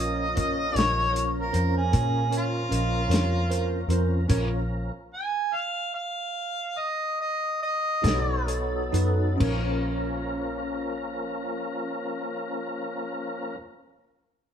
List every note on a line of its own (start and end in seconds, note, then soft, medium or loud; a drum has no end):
0.00 0.72 A#1 medium
0.00 4.26 F3 medium
0.00 4.26 A#3 medium
0.00 0.27 C#4 medium
0.00 4.26 C#4 medium
0.00 0.27 F4 soft
0.00 0.27 A#4 soft
0.00 4.26 A#4 medium
0.00 0.28 C#5 medium
0.00 0.78 D#5 loud
0.35 0.65 C#4 medium
0.35 0.66 F4 soft
0.35 0.66 A#4 medium
0.35 0.66 C#5 medium
0.35 kick medium
0.35 closed hi-hat medium
0.72 1.50 A#1 medium
0.72 1.04 C#4 medium
0.72 1.04 F4 medium
0.72 1.04 A#4 medium
0.72 1.04 D#5 medium
0.76 1.34 C#5 loud
0.76 snare loud
0.76 closed hi-hat medium
1.11 1.43 C#4 medium
1.11 1.43 F4 soft
1.11 1.43 A#4 soft
1.11 1.43 C#5 medium
1.16 closed hi-hat medium
1.40 1.75 A#4 medium
1.52 1.90 F2 medium
1.52 1.82 C#4 medium
1.52 1.83 F4 soft
1.52 1.83 A#4 medium
1.52 1.83 C5 medium
1.52 closed hi-hat medium
1.77 2.32 G#4 medium
1.92 2.67 A#2 medium
1.92 2.22 C#4 medium
1.92 2.22 F4 soft
1.92 2.22 A#4 soft
1.92 2.23 C#5 medium
1.92 kick loud
1.92 closed hi-hat medium
2.30 2.60 C#4 medium
2.30 2.61 F4 medium
2.30 2.61 A#4 soft
2.30 2.61 C#5 medium
2.30 closed hi-hat medium
2.37 3.88 F4 loud
2.69 3.07 A#1 medium
2.69 3.00 C#4 medium
2.69 3.00 F4 soft
2.69 3.01 A#4 soft
2.69 3.01 D#5 medium
2.69 closed hi-hat medium
3.09 3.84 F2 medium
3.09 3.39 C#4 medium
3.09 3.39 F4 soft
3.09 3.39 A#4 soft
3.09 3.40 C#5 medium
3.09 closed hi-hat medium
3.14 snare loud
3.48 3.79 C#4 medium
3.48 3.79 F4 medium
3.48 3.79 A#4 medium
3.48 3.80 C5 medium
3.48 closed hi-hat medium
3.88 4.25 F2 medium
3.88 4.19 C#4 medium
3.88 4.19 F4 medium
3.88 4.19 A#4 medium
3.88 4.20 C5 medium
3.88 closed hi-hat medium
4.27 4.89 A#1 medium
4.27 4.91 F3 medium
4.27 4.92 A#3 medium
4.27 4.58 C#4 medium
4.27 4.92 C#4 medium
4.27 4.59 F4 medium
4.27 4.92 A#4 medium
4.27 4.59 A#4 medium
4.27 4.60 C#5 medium
4.27 kick loud
4.27 closed hi-hat medium
4.27 crash medium
5.14 5.56 G#5 loud
5.54 5.92 F5 medium
5.94 6.79 F5 medium
6.78 7.17 D#5 medium
7.21 7.61 D#5 medium
7.62 8.47 D#5 loud
8.02 8.89 B1 medium
8.02 9.38 F#3 medium
8.02 9.39 B3 medium
8.02 8.36 D#4 medium
8.02 9.39 D#4 medium
8.02 8.36 F#4 medium
8.02 9.38 A4 medium
8.02 8.37 A4 medium
8.02 8.37 C#5 medium
8.02 kick medium
8.02 closed hi-hat medium
8.07 snare loud
8.47 8.82 D#4 medium
8.47 8.82 F#4 medium
8.47 8.82 A4 medium
8.47 8.82 C#5 medium
8.47 closed hi-hat medium
8.92 9.36 F#2 medium
8.92 9.28 D#4 medium
8.92 9.28 F#4 medium
8.92 9.28 A4 medium
8.92 9.28 B4 medium
8.92 closed hi-hat medium
9.36 13.56 A#1 medium
9.36 13.56 F3 medium
9.36 13.52 C#4 medium
9.36 13.56 C#4 medium
9.36 13.54 F4 medium
9.40 13.56 A#3 medium
9.40 13.57 A#4 medium
9.40 13.59 C#5 medium
9.40 kick loud
9.40 crash medium